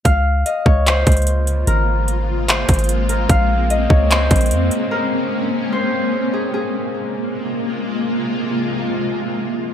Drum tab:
HH |x-------x-------x---xxxxx---x---|x-------x-------x---xxxxx---x---|x-------x-------x---xxxxx---x---|--------------------------------|
CP |----------------x---------------|----------------x---------------|----------------x---------------|--------------------------------|
BD |o-----------o-------o-----------|--------------------o-----------|o-----------o-------o-----------|--------------------------------|

HH |--------------------------------|--------------------------------|
CP |--------------------------------|--------------------------------|
BD |--------------------------------|--------------------------------|